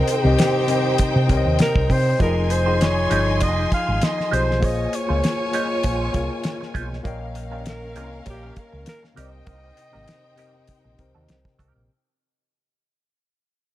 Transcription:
Already playing: C3 C4 D#4 G4 A#4 C5 D#5 G5
0.08 G4, closed hi-hat
0.23 C2 C3 C4 G4 A#4 D#5
0.39 snare, closed hi-hat
0.67 C3 C4 G4 A#4 D#5, closed hi-hat
0.98 kick, closed hi-hat
1.16 C3
1.27 C2 C3 C4 G4 A#4 C#5, kick, closed hi-hat
1.37 D#5
1.46 D#2
1.59 A#4, snare, closed hi-hat
1.76 C2, kick
1.90 C3 C5, kick, open hi-hat
2.19 F1 F3 G#3 D#4 F4 G4 G#4 A#4 C5 D#5 G#5 C6, kick, closed hi-hat
2.36 muted clean electric guitar stroke
2.50 C5, muted clean electric guitar stroke, closed hi-hat
2.65 F3 G#3 D#4 F4 G4 G#4 C5 D#5
2.81 C#5, snare, closed hi-hat
3.09 G1 F3 G#3 D#4 F4 G4 G#4 C5 D#5, closed hi-hat
3.27 muted clean electric guitar stroke
3.41 F1 G3 D4 F#4 B4 D#5, kick, closed hi-hat
3.53 G#3 D#4 G4 C5
3.72 F5, kick, closed hi-hat
3.87 G#1, muted clean electric guitar stroke
4.02 D#5, snare, closed hi-hat
4.17 muted clean electric guitar stroke, snare
4.30 B1 F3 G#3 D#4 F4 G4 G#4 C5 D#5, closed hi-hat
4.48 muted clean electric guitar stroke, snare
4.60 A#1 G#3 A#3 C#4 F4 G#4 C5 C#5 G#5, kick, closed hi-hat
4.65 D#5
4.78 muted clean electric guitar stroke
4.93 C#5, muted clean electric guitar stroke, closed hi-hat
5.07 C#2 G#3 A#3 C#4 F4 G#4 A#4 C5 C#5
5.24 snare, closed hi-hat
5.51 G#3 A#3 C#4 F4 G#4 C5 C#5 D#5, closed hi-hat
5.70 muted clean electric guitar stroke
5.83 A#1 G#3 C#4 F4 C5, kick, closed hi-hat
6.13 C2 A#3 F4 G#4 A#4 C#5, muted clean electric guitar stroke, kick, closed hi-hat
6.30 muted clean electric guitar stroke
6.44 snare, closed hi-hat
6.61 muted clean electric guitar stroke, snare
6.74 B1 G#3 C#4 F4 C5, kick, closed hi-hat
6.91 muted clean electric guitar stroke, snare
7.03 A#1 G3 A#3 C#4 F4 A#4 C#5 D#5 F5 G5, kick, closed hi-hat
7.21 muted clean electric guitar stroke
7.35 muted clean electric guitar stroke, closed hi-hat
7.50 G3 A#3 C#4 F4 A#4 C#5 D#5 F5 G5
7.66 A#4, snare, closed hi-hat
7.94 C2 G3 A#3 C#4 F4 A#4 C#5 D#5 F5 G#5, closed hi-hat
8.04 A#5
8.12 muted clean electric guitar stroke
8.26 A#1 G3 C#4 F4 G4 A#4, kick, closed hi-hat
8.56 A#4, muted clean electric guitar stroke, kick, closed hi-hat
8.72 C#2, muted clean electric guitar stroke
8.86 A#4, snare, closed hi-hat
9.03 muted clean electric guitar stroke, snare
9.15 C2 C3 A#3 C4 D#4 G4 A#4 C5 D#5 G5, closed hi-hat
9.20 D#5
9.32 muted clean electric guitar stroke
9.46 C2 A#3 D#4 G4 A#4, kick, closed hi-hat
9.62 muted clean electric guitar stroke
9.77 muted clean electric guitar stroke, closed hi-hat
9.91 G#1 C3 A#3 C4 D#4 G4 A#4 D#5
10.08 snare, closed hi-hat
10.36 C3 A#3 C4 D#4 G4 A#4 D#5, closed hi-hat
10.54 muted clean electric guitar stroke
10.68 muted clean electric guitar stroke, kick, closed hi-hat
10.84 A#1, muted clean electric guitar stroke
10.97 C2 C3 C4 G4 A#4 C5, kick, closed hi-hat
11.15 D#2 A#3 D#4 G4 A#4
11.29 C2, snare, closed hi-hat
11.45 muted clean electric guitar stroke, kick, snare
11.59 C2 A#3 D#4 G4 A#4, kick, closed hi-hat
11.76 A#1, muted clean electric guitar stroke

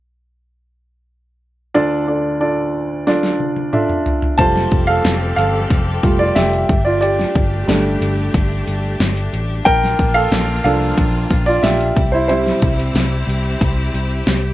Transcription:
1.74 D2 D3 D4 F4 A4 D5
2.08 D4 F4 A4 D5
2.40 D4 F4 A4 D5
3.07 D4 F4 A4 D5, snare
3.23 snare
3.40 high tom
3.56 high tom
3.73 D4 F4 A4 E5, mid tom
3.89 mid tom
4.06 floor tom
4.22 floor tom
4.38 F1 F3 G3 A3 C4 F4 G4 A4 C5 A5, kick, closed hi-hat, crash, shaker
4.56 snare, shaker
4.72 F1, kick, closed hi-hat
4.87 A4 F5, shaker
5.04 F1, snare, closed hi-hat, shaker
5.22 shaker
5.36 G1 A4 F5, closed hi-hat, shaker
5.54 shaker
5.70 F1, kick, closed hi-hat, shaker
5.87 shaker
6.03 F1 G3 A3 F4, kick, closed hi-hat, shaker
6.19 F4 D5, shaker
6.35 F1 G4 E5, snare, closed hi-hat, shaker
6.53 closed hi-hat, shaker
6.69 G1 A3 D4 G4, kick, closed hi-hat
6.85 F4 D5, shaker
7.01 G4 D5, closed hi-hat, shaker
7.19 snare, shaker
7.35 G1, kick, closed hi-hat
7.52 shaker
7.67 G1 G3 A3 D4, snare, closed hi-hat, shaker
7.85 shaker
8.01 G1, closed hi-hat, shaker
8.17 shaker
8.34 G1, kick, closed hi-hat, shaker
8.51 shaker
8.67 G1, closed hi-hat, shaker
8.83 shaker
8.99 G1, snare, closed hi-hat, shaker
9.17 closed hi-hat, shaker
9.33 A1, closed hi-hat
9.48 shaker
9.65 A#1 A#3 F4 A#4 G5, kick, closed hi-hat, shaker
9.83 snare, shaker
9.99 A#1, kick, closed hi-hat
10.14 A4 F5, shaker
10.32 A#1, snare, closed hi-hat, shaker
10.49 shaker
10.64 C2 F3 A#3 D4 A4 F5, closed hi-hat, shaker
10.81 shaker
10.98 A#1, kick, closed hi-hat, shaker
11.14 shaker
11.30 A#1, kick, closed hi-hat, shaker
11.46 F4 D5, shaker
11.63 A#1 G4 E5, snare, closed hi-hat, shaker
11.80 closed hi-hat, shaker
11.96 C2 C3 C4 E4 G4, kick, closed hi-hat
12.12 E4 C5, shaker
12.28 G3 C4 E4 C5, closed hi-hat, shaker
12.46 snare, shaker
12.62 C2, kick, closed hi-hat, shaker
12.78 closed hi-hat, shaker
12.95 C2, snare, closed hi-hat, shaker
13.12 shaker
13.27 C2, closed hi-hat, shaker
13.44 shaker
13.61 C2, kick, closed hi-hat, shaker
13.77 shaker
13.93 C2, closed hi-hat, shaker
14.09 shaker
14.26 C2, snare, closed hi-hat, shaker
14.43 shaker

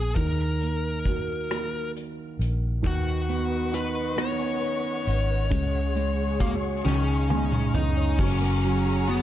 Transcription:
Already playing: A#1 B3 G#4
0.15 D#2 D#3 A#4, kick, closed hi-hat
0.61 A#3, closed hi-hat
1.05 F#4, kick, closed hi-hat
1.50 A#3, cross-stick, closed hi-hat
1.96 closed hi-hat
2.39 A#1, closed hi-hat
2.83 D#2 D#3 F#4 B4 D#5 F#5 C#6, kick, closed hi-hat
3.29 B3, closed hi-hat
3.72 D#4 F#4 B4, closed hi-hat
4.17 B3 C#5, cross-stick, closed hi-hat
4.39 C#4
4.62 B3, closed hi-hat
5.05 G#1 C#4, closed hi-hat
5.50 C#2 C#3 G#3 F#4 G#4 C#5 C#6, kick, closed hi-hat
5.95 G#3, closed hi-hat
6.39 A#3 F#4, kick, closed hi-hat
6.84 C#2 C#3 D#3 C#4 D#5 F5, snare
7.29 G#3 G#5, high tom
7.52 mid tom
7.74 C#2 B3 C#4 D#4 D#5, mid tom
7.96 C#4
8.18 F#1 F#3 A#3 C#4 G#4 F#5 A#5 C#6, kick, crash
8.40 A#3
8.63 F#3 C#4, ride
8.85 G#4
9.07 F#3 B3 C#4, ride

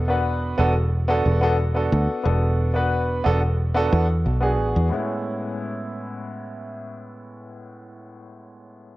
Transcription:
Already playing: E1
0.08 B3 D4 F#4 B4
0.58 E1 B3 D4 F#4 A4
1.08 B3 D4 F#4 A4
1.26 E1
1.41 B3 D4 F#4 A4
1.74 B3 D4 F#4 A4
1.92 D2
2.23 E1 B3 D4 F#4 A4
2.74 B3 D4 F#4 B4
3.24 E1 B3 D4 F#4 A4
3.74 B3 D4 F#4 A4
3.93 E2
4.26 B1
4.41 B3 D4 F#4 G#4
4.59 A1
4.76 E2
4.89 A2 G#3 B3 C#4
4.94 E4

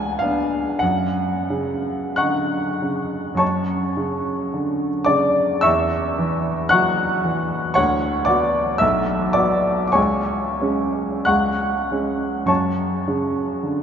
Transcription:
Already playing: C#2 G#5
0.19 B3 D4 F5
0.79 F#2 F#5
1.50 C#3
2.16 D3 F#5 C#6 F#6
2.82 C#3
3.35 F#2 A5 C#6
3.39 C#5
3.97 C#3
4.54 D3
5.05 C#3 D5 D6
5.61 E2 E5 C#6 E6
6.18 E3
6.69 F#3 F#5 C#6 F#6
7.24 E3
7.74 D2 C#5 F#5 C#6
8.25 B3 F#4 D5 D6
8.78 B1 E5 E6
9.33 B3 F#4 D5 D6
9.87 D6
9.92 C#2 C#5 G#5 C#6
10.61 G#3 C#4
11.25 C#2 F#5 C#6 F#6
11.91 G#3 C#4
12.46 F#2 C#5 A5 C#6
13.08 C#3
13.63 D3

